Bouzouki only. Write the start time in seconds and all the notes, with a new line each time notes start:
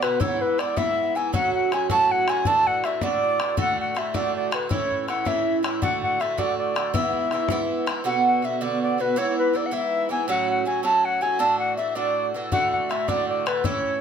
0.02 B2 D3 B3 F#4
0.20 G#2 E3 B3 E4
0.58 G#2 E3 B3 E4
0.77 G#2 E3 B3 E4
1.15 G#2 E3 B3 E4
1.33 A2 F#3 C#4 F#4
1.72 A2 F#3 C#4 F#4
1.90 A2 F#3 C#4 F#4
2.28 A2 F#3 C#4 F#4
2.45 A2 E3 D4 F#4
2.84 A2 E3 D4 F#4
3.01 A2 E3 D4 F#4
3.39 A2 E3 D4 F#4
3.57 A2 D3 A3 F#4
3.95 A2 D3 A3 F#4
4.14 A2 D3 A3 F#4
4.52 A2 D3 A3 F#4
4.69 A2 E3 C#4 E4
5.08 A2 E3 C#4 E4
5.25 A2 E3 C#4 E4
5.63 A2 E3 C#4 E4
5.82 A2 D3 A3 F#4
6.20 A2 D3 A3 F#4
6.38 A2 D3 A3 F#4
6.75 A2 D3 A3 F#4
6.94 G#2 E3 B3 E4
7.32 G#2 E3 B3 E4
7.50 G#2 E3 B3 E4
7.86 G#2 E3 B3 E4
8.04 B2 D3 B3 F#4
8.42 B2 D3 B3 F#4
8.61 B2 D3 B3 F#4
8.98 B2 D3 B3 F#4
9.16 G#2 E3 B3 E4
9.53 G#2 E3 B3 E4
9.71 G#2 E3 B3 E4
10.09 G#2 E3 B3 E4
10.28 A2 F#3 C#4 F#4
10.65 A2 F#3 C#4 F#4
10.83 A2 F#3 C#4 F#4
11.21 A2 F#3 C#4 F#4
11.39 A2 E3 D4 F#4
11.77 A2 E3 D4 F#4
11.95 A2 E3 D4 F#4
12.34 A2 E3 D4 F#4
12.52 A2 D3 A3 F#4
12.89 A2 D3 A3 F#4
13.08 A2 D3 A3 F#4
13.46 A2 D3 A3 F#4
13.64 A2 E3 C#4 E4